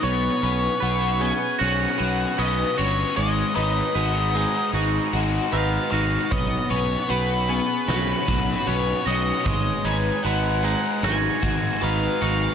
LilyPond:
<<
  \new Staff \with { instrumentName = "Lead electric guitar" } { \time 4/4 \key b \major \tempo 4 = 76 cis''4. gis''8 fis''4 dis''8 cis''8 | dis''8 dis''4. r4 eis''8 eis''8 | dis''8 cis''8 b'4 b'4 cis''8 dis''8 | dis''8 gis''8 fis''8 fis''8 gis''4 eis''8 eis''8 | }
  \new Staff \with { instrumentName = "Clean electric guitar" } { \time 4/4 \key b \major cis''4 b'8 gis'4 r8 fis'4 | cis''4 b'8 gis'4 r8 fis'4 | cis''4 b'8 gis'4 r8 fis'4 | cis''4 b'8 gis'4 r8 fis'4 | }
  \new Staff \with { instrumentName = "Overdriven electric guitar" } { \time 4/4 \key b \major b8 b'8 fis'8 b8 cis'8 fis'8 b'8 cis'8 | gis8 b'8 fis'8 gis8 dis'8 fis'8 b'8 dis'8 | b8 b'8 fis'8 b8 cis'8 fis'8 b'8 cis'8 | gis8 b'8 fis'8 gis8 dis'8 fis'8 b'8 dis'8 | }
  \new Staff \with { instrumentName = "Clean electric guitar" } { \time 4/4 \key b \major b8 cis'8 b8 cis'8 fis'8 b8 cis'8 fis'8 | gis8 dis'8 gis8 dis'8 fis'8 gis8 dis'8 fis'8 | b8 cis'8 b8 cis'8 fis'8 b8 cis'8 fis'8 | gis8 dis'8 gis8 dis'8 fis'8 gis8 dis'8 fis'8 | }
  \new Staff \with { instrumentName = "Fingered electric bass" } { \clef bass \time 4/4 \key b \major b,,8 b,,8 b,,4 b,,8 b,,8 b,,8 g,,8 | gis,,8 gis,,8 gis,,4 gis,,8 gis,,8 gis,,8 gis,,8 | b,,8 b,,8 b,,4 b,,8 b,,8 b,,8 b,,8 | gis,,8 gis,,8 gis,,4 gis,,8 gis,,8 gis,,8 gis,,8 | }
  \new DrumStaff \with { instrumentName = "Drums" } \drummode { \time 4/4 r4 r4 r4 r4 | r4 r4 r4 r4 | <hho bd>4 hho4 <hho sn>8 bd8 hho4 | <hho bd>4 hho4 <hho sn>8 bd8 hho4 | }
>>